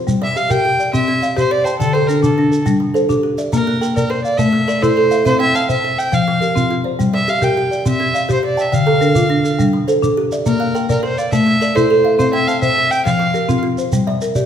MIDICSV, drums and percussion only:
0, 0, Header, 1, 2, 480
1, 0, Start_track
1, 0, Tempo, 288739
1, 111, Time_signature, 12, 3, 24, 8
1, 24033, End_track
2, 0, Start_track
2, 0, Title_t, "Shekere"
2, 135, Note_on_c, 9, 82, 80
2, 301, Note_off_c, 9, 82, 0
2, 614, Note_on_c, 9, 82, 69
2, 780, Note_off_c, 9, 82, 0
2, 839, Note_on_c, 9, 82, 76
2, 1005, Note_off_c, 9, 82, 0
2, 1327, Note_on_c, 9, 82, 59
2, 1493, Note_off_c, 9, 82, 0
2, 1568, Note_on_c, 9, 82, 72
2, 1735, Note_off_c, 9, 82, 0
2, 2046, Note_on_c, 9, 82, 54
2, 2212, Note_off_c, 9, 82, 0
2, 2291, Note_on_c, 9, 82, 60
2, 2457, Note_off_c, 9, 82, 0
2, 2763, Note_on_c, 9, 82, 58
2, 2930, Note_off_c, 9, 82, 0
2, 3008, Note_on_c, 9, 82, 75
2, 3174, Note_off_c, 9, 82, 0
2, 3479, Note_on_c, 9, 82, 64
2, 3645, Note_off_c, 9, 82, 0
2, 3715, Note_on_c, 9, 82, 71
2, 3881, Note_off_c, 9, 82, 0
2, 4197, Note_on_c, 9, 82, 55
2, 4363, Note_off_c, 9, 82, 0
2, 4427, Note_on_c, 9, 82, 76
2, 4593, Note_off_c, 9, 82, 0
2, 4915, Note_on_c, 9, 82, 49
2, 5081, Note_off_c, 9, 82, 0
2, 5150, Note_on_c, 9, 82, 56
2, 5316, Note_off_c, 9, 82, 0
2, 5622, Note_on_c, 9, 82, 55
2, 5789, Note_off_c, 9, 82, 0
2, 5866, Note_on_c, 9, 82, 75
2, 6032, Note_off_c, 9, 82, 0
2, 6360, Note_on_c, 9, 82, 57
2, 6526, Note_off_c, 9, 82, 0
2, 6601, Note_on_c, 9, 82, 72
2, 6767, Note_off_c, 9, 82, 0
2, 7065, Note_on_c, 9, 82, 47
2, 7231, Note_off_c, 9, 82, 0
2, 7294, Note_on_c, 9, 82, 75
2, 7460, Note_off_c, 9, 82, 0
2, 7792, Note_on_c, 9, 82, 51
2, 7959, Note_off_c, 9, 82, 0
2, 8033, Note_on_c, 9, 82, 59
2, 8199, Note_off_c, 9, 82, 0
2, 8501, Note_on_c, 9, 82, 53
2, 8667, Note_off_c, 9, 82, 0
2, 8743, Note_on_c, 9, 82, 67
2, 8909, Note_off_c, 9, 82, 0
2, 9228, Note_on_c, 9, 82, 60
2, 9395, Note_off_c, 9, 82, 0
2, 9466, Note_on_c, 9, 82, 67
2, 9632, Note_off_c, 9, 82, 0
2, 9960, Note_on_c, 9, 82, 54
2, 10127, Note_off_c, 9, 82, 0
2, 10189, Note_on_c, 9, 82, 76
2, 10356, Note_off_c, 9, 82, 0
2, 10678, Note_on_c, 9, 82, 59
2, 10844, Note_off_c, 9, 82, 0
2, 10920, Note_on_c, 9, 82, 73
2, 11087, Note_off_c, 9, 82, 0
2, 11640, Note_on_c, 9, 82, 72
2, 11807, Note_off_c, 9, 82, 0
2, 12100, Note_on_c, 9, 82, 56
2, 12266, Note_off_c, 9, 82, 0
2, 12335, Note_on_c, 9, 82, 73
2, 12502, Note_off_c, 9, 82, 0
2, 12841, Note_on_c, 9, 82, 59
2, 13007, Note_off_c, 9, 82, 0
2, 13064, Note_on_c, 9, 82, 86
2, 13230, Note_off_c, 9, 82, 0
2, 13553, Note_on_c, 9, 82, 57
2, 13719, Note_off_c, 9, 82, 0
2, 13792, Note_on_c, 9, 82, 73
2, 13958, Note_off_c, 9, 82, 0
2, 14275, Note_on_c, 9, 82, 64
2, 14441, Note_off_c, 9, 82, 0
2, 14519, Note_on_c, 9, 82, 81
2, 14685, Note_off_c, 9, 82, 0
2, 14989, Note_on_c, 9, 82, 67
2, 15156, Note_off_c, 9, 82, 0
2, 15217, Note_on_c, 9, 82, 83
2, 15384, Note_off_c, 9, 82, 0
2, 15711, Note_on_c, 9, 82, 62
2, 15878, Note_off_c, 9, 82, 0
2, 15953, Note_on_c, 9, 82, 78
2, 16119, Note_off_c, 9, 82, 0
2, 16431, Note_on_c, 9, 82, 61
2, 16598, Note_off_c, 9, 82, 0
2, 16680, Note_on_c, 9, 82, 82
2, 16846, Note_off_c, 9, 82, 0
2, 17154, Note_on_c, 9, 82, 62
2, 17320, Note_off_c, 9, 82, 0
2, 17391, Note_on_c, 9, 82, 87
2, 17557, Note_off_c, 9, 82, 0
2, 17878, Note_on_c, 9, 82, 61
2, 18045, Note_off_c, 9, 82, 0
2, 18114, Note_on_c, 9, 82, 74
2, 18280, Note_off_c, 9, 82, 0
2, 18588, Note_on_c, 9, 82, 57
2, 18755, Note_off_c, 9, 82, 0
2, 18823, Note_on_c, 9, 82, 77
2, 18989, Note_off_c, 9, 82, 0
2, 19312, Note_on_c, 9, 82, 50
2, 19479, Note_off_c, 9, 82, 0
2, 19569, Note_on_c, 9, 82, 65
2, 19735, Note_off_c, 9, 82, 0
2, 20274, Note_on_c, 9, 82, 65
2, 20440, Note_off_c, 9, 82, 0
2, 20755, Note_on_c, 9, 82, 60
2, 20922, Note_off_c, 9, 82, 0
2, 20985, Note_on_c, 9, 82, 66
2, 21152, Note_off_c, 9, 82, 0
2, 21474, Note_on_c, 9, 82, 56
2, 21640, Note_off_c, 9, 82, 0
2, 21723, Note_on_c, 9, 82, 81
2, 21889, Note_off_c, 9, 82, 0
2, 22190, Note_on_c, 9, 82, 58
2, 22356, Note_off_c, 9, 82, 0
2, 22429, Note_on_c, 9, 82, 75
2, 22595, Note_off_c, 9, 82, 0
2, 22909, Note_on_c, 9, 82, 63
2, 23075, Note_off_c, 9, 82, 0
2, 23149, Note_on_c, 9, 82, 94
2, 23315, Note_off_c, 9, 82, 0
2, 23629, Note_on_c, 9, 82, 66
2, 23796, Note_off_c, 9, 82, 0
2, 23861, Note_on_c, 9, 82, 78
2, 24027, Note_off_c, 9, 82, 0
2, 24033, End_track
0, 0, End_of_file